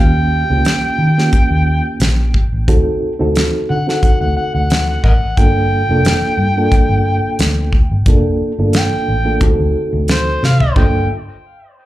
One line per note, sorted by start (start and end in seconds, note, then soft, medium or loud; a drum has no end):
0.00 0.43 D#2 medium
0.00 0.42 A#3 medium
0.00 0.42 C#4 medium
0.00 0.42 F4 medium
0.00 0.42 G4 medium
0.00 1.97 G5 loud
0.50 0.64 C#2 medium
0.50 1.07 A#3 medium
0.50 1.07 C#4 medium
0.50 1.07 F4 medium
0.50 1.08 G4 medium
0.65 snare loud
0.65 closed hi-hat medium
0.83 muted fingered electric bass stroke soft
0.98 1.28 D#3 medium
1.18 2.32 A#3 medium
1.18 2.32 C#4 medium
1.18 2.33 F4 medium
1.18 2.33 G4 medium
1.18 snare soft
1.33 kick loud
1.33 closed hi-hat medium
1.50 1.80 D#2 medium
2.00 2.45 A#1 medium
2.00 snare loud
2.00 closed hi-hat medium
2.34 kick medium
2.53 2.66 A1 medium
2.68 2.84 D2 medium
2.68 3.12 C4 medium
2.68 3.12 D#4 medium
2.68 3.12 F#4 medium
2.68 3.12 A4 medium
2.68 kick loud
2.68 closed hi-hat medium
3.02 muted fingered electric bass stroke soft
3.19 3.49 D2 medium
3.19 3.76 C4 medium
3.19 3.77 D#4 medium
3.19 3.77 F#4 medium
3.19 3.77 A4 medium
3.35 snare loud
3.35 closed hi-hat medium
3.70 4.14 D3 medium
3.70 3.87 F#5 loud
3.87 5.01 C4 medium
3.87 5.02 D#4 medium
3.87 5.02 F#4 medium
3.87 5.02 A4 medium
3.87 4.03 F#5 medium
3.87 snare soft
4.03 4.20 F#5 medium
4.03 kick loud
4.03 closed hi-hat medium
4.20 4.35 D2 medium
4.20 4.35 F#5 medium
4.37 4.53 F#5 medium
4.54 4.97 D2 medium
4.54 4.69 F#5 medium
4.70 4.87 F#5 loud
4.70 snare loud
4.70 closed hi-hat medium
4.89 5.03 F#5 medium
5.04 5.19 A1 medium
5.04 5.12 A#4 medium
5.04 5.13 D#5 medium
5.04 5.40 F#5 medium
5.04 kick medium
5.37 5.82 G1 loud
5.37 5.81 A#3 medium
5.37 5.81 D4 medium
5.37 5.82 F4 medium
5.37 5.82 A4 medium
5.37 7.36 G5 loud
5.37 kick loud
5.37 closed hi-hat medium
5.89 6.03 F1 medium
5.89 6.46 A#3 medium
5.89 6.46 D4 medium
5.89 6.47 F4 medium
5.89 6.47 A4 medium
6.05 snare loud
6.05 closed hi-hat medium
6.22 muted fingered electric bass stroke soft
6.37 6.67 G2 medium
6.57 7.71 A#3 medium
6.57 7.71 D4 medium
6.57 7.72 F4 medium
6.57 7.72 A4 medium
6.72 kick loud
6.72 closed hi-hat medium
6.89 7.19 G1 medium
7.39 7.84 D2 medium
7.39 snare loud
7.39 closed hi-hat medium
7.73 kick medium
7.91 8.05 G1 medium
8.06 8.22 F1 medium
8.06 8.51 A#3 medium
8.06 8.51 D4 medium
8.06 8.51 F4 medium
8.06 8.52 A4 medium
8.06 kick loud
8.06 closed hi-hat medium
8.41 muted fingered electric bass stroke soft
8.58 8.88 G1 medium
8.58 9.16 A#3 medium
8.58 9.16 D4 medium
8.58 9.16 F4 medium
8.58 9.16 A4 medium
8.73 9.40 G5 medium
8.73 snare loud
8.73 closed hi-hat medium
9.08 9.37 A1 medium
9.25 9.41 A#3 medium
9.25 9.41 D4 medium
9.25 9.41 F4 medium
9.25 9.41 A4 medium
9.41 9.57 D2 medium
9.41 10.58 C4 medium
9.41 10.58 D#4 medium
9.41 10.58 F#4 medium
9.41 10.58 A4 medium
9.41 kick loud
9.41 closed hi-hat medium
9.59 9.73 D2 medium
9.93 10.36 D2 medium
10.08 10.43 C5 medium
10.08 snare loud
10.08 closed hi-hat medium
10.43 10.58 C3 medium
10.43 10.76 F5 medium
10.43 snare medium
10.60 floor tom medium
10.76 11.08 G1 medium
10.76 11.08 A#3 medium
10.76 11.08 D4 medium
10.76 11.08 F4 medium
10.76 11.08 A4 medium
10.76 10.83 C5 medium
10.76 10.86 D#5 medium
10.76 11.08 G5 medium
10.76 kick loud
10.76 floor tom medium